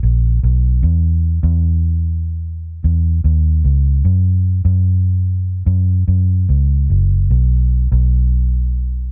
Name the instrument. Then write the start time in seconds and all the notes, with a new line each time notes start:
fingered electric bass
0.03 A#1
0.43 B1
0.83 E2
1.43 E2
2.84 E2
3.24 D#2
3.64 C#2
4.05 F#2
4.65 F#2
5.66 F#2
6.08 F#2
6.49 C#2
6.90 F#1
7.31 B1
7.92 B1